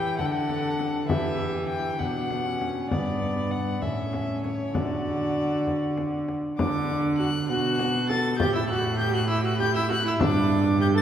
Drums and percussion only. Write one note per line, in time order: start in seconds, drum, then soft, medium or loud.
0.19 frame drum soft
0.50 frame drum soft
0.79 frame drum soft
1.09 frame drum medium
2.00 frame drum soft
2.31 frame drum soft
2.61 frame drum soft
2.91 frame drum medium
3.83 frame drum soft
4.13 frame drum soft
4.44 frame drum soft
4.75 frame drum medium
5.67 frame drum soft
5.98 frame drum soft
6.29 frame drum soft
6.59 frame drum medium
7.79 frame drum medium
8.10 frame drum medium
8.40 frame drum medium
9.60 frame drum medium
9.90 frame drum soft
10.21 frame drum medium